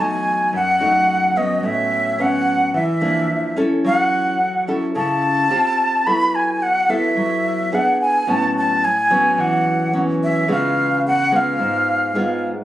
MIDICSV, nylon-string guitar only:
0, 0, Header, 1, 2, 480
1, 0, Start_track
1, 0, Key_signature, 3, "major"
1, 0, Tempo, 554017
1, 1413, Time_signature, 4, 2, 24, 8
1, 10951, End_track
2, 0, Start_track
2, 0, Title_t, "Nylon-string guitar"
2, 0, Program_c, 0, 24
2, 0, Note_on_c, 0, 47, 65
2, 0, Note_on_c, 0, 54, 53
2, 0, Note_on_c, 0, 57, 47
2, 0, Note_on_c, 0, 63, 53
2, 431, Note_off_c, 0, 47, 0
2, 455, Note_off_c, 0, 54, 0
2, 457, Note_off_c, 0, 57, 0
2, 458, Note_on_c, 0, 42, 64
2, 460, Note_off_c, 0, 63, 0
2, 696, Note_on_c, 0, 54, 61
2, 701, Note_on_c, 0, 57, 57
2, 705, Note_on_c, 0, 63, 64
2, 1136, Note_off_c, 0, 54, 0
2, 1137, Note_off_c, 0, 57, 0
2, 1140, Note_off_c, 0, 63, 0
2, 1178, Note_on_c, 0, 54, 57
2, 1182, Note_on_c, 0, 59, 58
2, 1185, Note_on_c, 0, 61, 68
2, 1391, Note_off_c, 0, 42, 0
2, 1414, Note_on_c, 0, 45, 66
2, 1856, Note_off_c, 0, 54, 0
2, 1858, Note_off_c, 0, 59, 0
2, 1859, Note_off_c, 0, 61, 0
2, 1892, Note_on_c, 0, 54, 54
2, 1895, Note_on_c, 0, 59, 53
2, 1901, Note_on_c, 0, 61, 59
2, 2348, Note_off_c, 0, 45, 0
2, 2368, Note_off_c, 0, 54, 0
2, 2371, Note_off_c, 0, 59, 0
2, 2371, Note_off_c, 0, 61, 0
2, 2375, Note_on_c, 0, 52, 72
2, 2608, Note_on_c, 0, 53, 58
2, 2613, Note_on_c, 0, 62, 60
2, 2614, Note_on_c, 0, 58, 61
2, 2828, Note_off_c, 0, 52, 0
2, 3051, Note_off_c, 0, 53, 0
2, 3052, Note_off_c, 0, 58, 0
2, 3053, Note_off_c, 0, 62, 0
2, 3088, Note_on_c, 0, 61, 62
2, 3093, Note_on_c, 0, 64, 61
2, 3097, Note_on_c, 0, 69, 73
2, 3331, Note_on_c, 0, 54, 65
2, 3771, Note_off_c, 0, 61, 0
2, 3771, Note_off_c, 0, 64, 0
2, 3775, Note_off_c, 0, 69, 0
2, 4050, Note_on_c, 0, 61, 54
2, 4055, Note_on_c, 0, 64, 61
2, 4060, Note_on_c, 0, 69, 64
2, 4265, Note_off_c, 0, 54, 0
2, 4291, Note_on_c, 0, 49, 72
2, 4730, Note_off_c, 0, 61, 0
2, 4733, Note_off_c, 0, 64, 0
2, 4735, Note_off_c, 0, 69, 0
2, 4746, Note_off_c, 0, 49, 0
2, 4769, Note_on_c, 0, 60, 62
2, 4772, Note_on_c, 0, 65, 56
2, 4775, Note_on_c, 0, 67, 59
2, 5210, Note_off_c, 0, 60, 0
2, 5212, Note_off_c, 0, 65, 0
2, 5212, Note_off_c, 0, 67, 0
2, 5255, Note_on_c, 0, 54, 65
2, 5256, Note_on_c, 0, 59, 55
2, 5258, Note_on_c, 0, 64, 54
2, 5262, Note_on_c, 0, 69, 55
2, 5728, Note_off_c, 0, 59, 0
2, 5730, Note_off_c, 0, 64, 0
2, 5732, Note_off_c, 0, 69, 0
2, 5968, Note_on_c, 0, 59, 56
2, 5972, Note_on_c, 0, 64, 59
2, 5976, Note_on_c, 0, 69, 60
2, 6188, Note_off_c, 0, 54, 0
2, 6207, Note_on_c, 0, 54, 67
2, 6649, Note_off_c, 0, 59, 0
2, 6652, Note_off_c, 0, 64, 0
2, 6654, Note_off_c, 0, 69, 0
2, 6663, Note_off_c, 0, 54, 0
2, 6689, Note_on_c, 0, 59, 52
2, 6694, Note_on_c, 0, 62, 61
2, 6696, Note_on_c, 0, 68, 64
2, 7131, Note_off_c, 0, 59, 0
2, 7131, Note_off_c, 0, 62, 0
2, 7133, Note_off_c, 0, 68, 0
2, 7166, Note_on_c, 0, 45, 63
2, 7166, Note_on_c, 0, 54, 51
2, 7169, Note_on_c, 0, 59, 52
2, 7173, Note_on_c, 0, 61, 61
2, 7643, Note_off_c, 0, 54, 0
2, 7646, Note_off_c, 0, 59, 0
2, 7648, Note_off_c, 0, 61, 0
2, 7888, Note_on_c, 0, 54, 67
2, 7892, Note_on_c, 0, 59, 54
2, 7894, Note_on_c, 0, 61, 59
2, 8104, Note_off_c, 0, 45, 0
2, 8126, Note_on_c, 0, 52, 66
2, 8570, Note_off_c, 0, 54, 0
2, 8571, Note_off_c, 0, 59, 0
2, 8573, Note_off_c, 0, 61, 0
2, 8605, Note_on_c, 0, 54, 52
2, 8609, Note_on_c, 0, 59, 59
2, 8614, Note_on_c, 0, 61, 62
2, 9049, Note_off_c, 0, 54, 0
2, 9051, Note_off_c, 0, 59, 0
2, 9053, Note_off_c, 0, 61, 0
2, 9064, Note_off_c, 0, 52, 0
2, 9081, Note_on_c, 0, 49, 70
2, 9085, Note_on_c, 0, 56, 50
2, 9087, Note_on_c, 0, 59, 58
2, 9091, Note_on_c, 0, 65, 60
2, 9564, Note_off_c, 0, 56, 0
2, 9566, Note_off_c, 0, 59, 0
2, 9568, Note_off_c, 0, 65, 0
2, 9804, Note_on_c, 0, 56, 62
2, 9809, Note_on_c, 0, 59, 59
2, 9811, Note_on_c, 0, 65, 67
2, 10023, Note_off_c, 0, 49, 0
2, 10043, Note_on_c, 0, 44, 69
2, 10490, Note_off_c, 0, 56, 0
2, 10491, Note_off_c, 0, 59, 0
2, 10493, Note_off_c, 0, 65, 0
2, 10526, Note_on_c, 0, 56, 57
2, 10529, Note_on_c, 0, 59, 62
2, 10534, Note_on_c, 0, 65, 68
2, 10838, Note_off_c, 0, 56, 0
2, 10839, Note_off_c, 0, 59, 0
2, 10842, Note_off_c, 0, 65, 0
2, 10951, Note_off_c, 0, 44, 0
2, 10951, End_track
0, 0, End_of_file